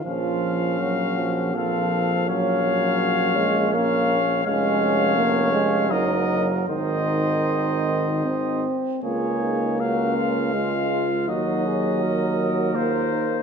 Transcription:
X:1
M:3/4
L:1/8
Q:1/4=80
K:Gblyd
V:1 name="Trumpet"
f4 f2 | f4 f2 | [K:Db] f4 e2 | e4- e z |
d2 f4 | e4 c2 |]
V:2 name="Trumpet"
F2 G2 =A2 | d4 d2 | [K:Db] d4 B2 | c4- c z |
A2 G F F2 | G2 B4 |]
V:3 name="French horn"
D4 C2 | D4 D2 | [K:Db] D4 E2 | E4- E z |
F E D2 F F | E A G2 F E |]
V:4 name="Euphonium" clef=bass
F,2 G, F, F,2 | G, G,2 A, B, z | [K:Db] A,2 B, A, G,2 | E,4 C2 |
B,4 A,2 | G,4 B,2 |]
V:5 name="Tuba" clef=bass
B,,,6- | B,,,6 | [K:Db] F,,,4 G,,,2 | A,,,4- A,,, z |
D,,6 | E,,6 |]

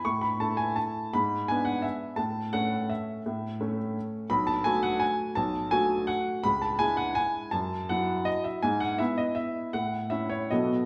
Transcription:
X:1
M:3/4
L:1/8
Q:1/4=166
K:Alyd
V:1 name="Upright piano"
c' b a g a2 | b2 g f e2 | a2 f2 e2- | e3 z3 |
b a g f g2 | a2 g2 f2 | b a g f g2 | a2 f2 d e |
g f e d e2 | f2 e c d2 |]
V:2 name="Upright piano"
A,,2 [A,E]4 | G,,2 [B,=D]4 | A,,2 [A,C]4 | A,,2 [A,C]4 |
B,,,2 [A,F]4 | B,,,2 [A,F]4 | C,,2 [G,E]4 | F,,2 [F,E]4 |
G,,2 [B,E]4 | A,,2 [CE]2 [B,,F,B,A]2 |]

